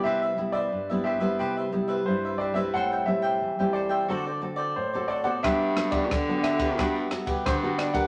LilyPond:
<<
  \new Staff \with { instrumentName = "Grand piano" } { \time 4/4 \key c \major \tempo 4 = 89 e''8. d''8. e''4. c''8 d''16 e''16 | fis''8 e''4 d''4. c''8 d''16 fis''16 | e''8. d''8. e''4. c''8 d''16 fis''16 | }
  \new Staff \with { instrumentName = "Cavaquinho" } { \time 4/4 \key c \major <g' b' c'' e''>16 <b' c'' e''>16 r16 <b' c'' e''>8 <b' c'' e''>16 <g' b' c'' e''>16 <b' c'' e''>16 <g' b' c'' e''>16 <b' c'' e''>16 r16 <b' c'' e''>8 <b' c'' e''>16 <g' b' c'' e''>16 <b' c'' e''>16 | <a' c'' e'' g''>16 <c'' e'' g''>16 r16 <c'' e'' g''>8 <c'' e'' g''>16 <a' c'' e'' g''>16 <c'' e'' g''>16 <fis' a' c'' d''>16 <a' c'' d''>16 r16 <a' c'' d''>8 <a' c'' d''>16 <fis' a' c'' d''>16 <a' c'' d''>16 | <d' g' b' fis''>16 <g' b' fis''>16 r16 <g' b' fis''>8 <g' b' fis''>16 <d' g' b' fis''>16 <g' b' fis''>16 <d' g' b' fis''>16 <g' b' fis''>16 r16 <g' b' fis''>8 <g' b' fis''>16 <d' g' b' fis''>16 <g' b' fis''>16 | }
  \new Staff \with { instrumentName = "Nylon-string guitar" } { \time 4/4 \key c \major << { <g b e'>8 <g b e'>8 r16 <g b e'>8 <g b e'>8. <g b e'>8 <g e'>8. <g c' e'>16~ | <g c' e'>8 <g c' e'>8. <g c' e'>8. <c' fis' a'>16 r16 <c' fis' a'>8 r16 <c' fis' a'>8 <b fis' a'>16~ | <b fis' a'>8 <b fis' a'>8 r16 <b fis' a'>8. <b fis' a'>8 <b fis' a'>8 r16 <b fis' a'>8 <d' g' bes'>16 | } \\ { c4 g,4 c4 g,4 | a,4 e4 d4 a,4 | g4 d4 g4 d4 | } >> }
  \new Staff \with { instrumentName = "Baritone saxophone" } { \clef bass \time 4/4 \key c \major r1 | r1 | g,4 d4 g,8 r8 g,4 | }
  \new DrumStaff \with { instrumentName = "Drums" } \drummode { \time 4/4 r4 r4 r4 r4 | r4 r4 r4 r4 | <bd cymr ss>8 <cymr ss>16 <bd cymr>16 <bd cymr ss>8 <cymr ss>16 <bd cymr>16 <bd cymr ss>8 <cymr ss>16 <bd cymr>16 <bd cymr ss>8 <cymr ss>16 <bd cymr>16 | }
>>